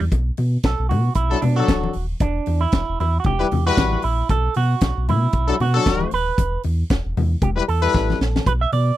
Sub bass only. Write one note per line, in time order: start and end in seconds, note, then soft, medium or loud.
0.01 0.09 E2 medium
0.12 0.31 B1 loud
0.38 0.57 B2 medium
0.64 0.75 B1 loud
0.79 0.92 B1 loud
0.91 1.10 B2 loud
1.16 1.35 B1 loud
1.43 1.62 B2 loud
1.69 1.88 D1 medium
1.95 2.14 D#1 medium
2.21 2.40 E1 loud
2.48 2.67 E2 loud
2.73 2.84 E1 loud
2.89 2.97 E1 loud
3.00 3.19 E2 loud
3.25 3.44 E1 loud
3.52 3.71 E2 medium
3.78 3.97 A1 medium
4.04 4.23 A#1 medium
4.30 4.49 B1 loud
4.56 4.75 B2 medium
4.82 4.93 B1 loud
4.97 5.10 B1 loud
5.08 5.27 B2 loud
5.34 5.53 B1 loud
5.60 5.79 B2 medium
5.86 6.05 D1 medium
6.12 6.31 D#1 medium
6.38 6.58 E1 loud
6.65 6.84 E2 loud
6.91 7.01 E1 loud
7.05 7.14 E1 medium
7.17 7.36 E2 loud
7.42 7.61 E1 loud
7.69 7.88 E2 medium
7.95 8.14 A1 medium
8.21 8.40 A#1 medium
8.47 8.66 B1 loud
8.72 8.92 B2 medium